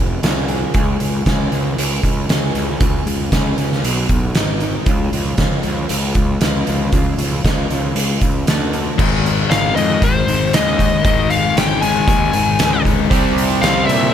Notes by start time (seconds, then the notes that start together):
Already playing: F1 F3 C4 F4 G#4
0.23 C2 F3 C4 F4 G#4, snare, closed hi-hat
0.48 C4 F4 G#4, closed hi-hat
0.74 C#2 C#3 G#3 C#4 F4 G#4, kick, closed hi-hat
1.00 C#2 C#4 F4 G#4, closed hi-hat
1.26 C#2 C#3 G#3 C#4 F4 G#4, kick, snare, closed hi-hat
1.52 C#2 C#4 F4 G#4, closed hi-hat
1.77 C#2, closed hi-hat
2.03 C#2, kick, closed hi-hat
2.29 C#2 G#3 C#4 F4 G#4, snare, closed hi-hat
2.55 C#2 C#4 F4 G#4, closed hi-hat
2.80 C#2 C#3 G#3 C#4 F4 G#4, kick, closed hi-hat
3.06 C#2 C#4 F4 G#4, closed hi-hat
3.32 C#2 C#3 G#3 C#4 F4 G#4, kick, snare, closed hi-hat
3.57 C#2 C#4 F4 G#4, closed hi-hat
3.72 snare
3.84 B1 B2 F#3 B3 F#4, closed hi-hat
4.09 B1, kick, closed hi-hat
4.35 G#1 G#2 D#3 G#3 D#4, snare, closed hi-hat
4.60 D#3 G#3 D#4, closed hi-hat
4.86 C#2 C#3 F3 G#3 C#4 F4, kick, closed hi-hat
5.13 C#2 G#3 C#4 F4, closed hi-hat
5.38 C#2 C#3 F3 G#3 C#4 F4, kick, snare, closed hi-hat
5.63 C#2 G#3 C#4 F4, closed hi-hat
5.89 C#2, closed hi-hat
6.15 C#2, kick, closed hi-hat
6.41 C#2 F3 G#3 C#4 F4, snare, closed hi-hat
6.67 C#2 G#3 C#4 F4, closed hi-hat
6.92 C#2 C#3 F3 G#3 C#4 F4, kick, closed hi-hat
7.18 C#2 G#3 C#4 F4, closed hi-hat
7.45 C#2 C#3 F3 G#3 C#4 F4, kick, snare, closed hi-hat
7.70 C#2 G#3 C#4 F4, closed hi-hat
7.96 C#2, closed hi-hat
8.21 C#2, kick, closed hi-hat
8.47 D2 D3 A3 D4 A4, snare, closed hi-hat
8.73 A3 D4 A4, closed hi-hat
8.98 G#1 G#2 D#3 G#3, kick, crash
9.25 C4, closed hi-hat
9.51 G#1 G#4 F5, snare, closed hi-hat
9.75 F2 G#2 D#3 G#3 D#4 D#5, closed hi-hat
10.02 G#1 C4 C5, kick, closed hi-hat
10.27 G#1 D#4, closed hi-hat
10.53 D#2 G#4 D#5, snare, closed hi-hat
10.79 D#4, kick, closed hi-hat
11.04 G#1 G#2 D#3 G#3 D#5, kick, closed hi-hat
11.30 C4 F5, closed hi-hat
11.56 G#1 G#4 G5, snare, closed hi-hat
11.81 G#2 D#3 G#3 D#4 G#5, closed hi-hat
12.08 D#2 C4, kick, closed hi-hat
12.33 G#1 D#4, closed hi-hat
12.59 C#2 G#4, snare, closed hi-hat
12.85 D#4, kick, closed hi-hat
13.10 C2 C3 G3 C4, kick, closed hi-hat
13.37 C4, closed hi-hat
13.62 C2 G4 F5, snare, closed hi-hat
13.86 A#2 G3 C4 E4 E5, closed hi-hat
13.90 C3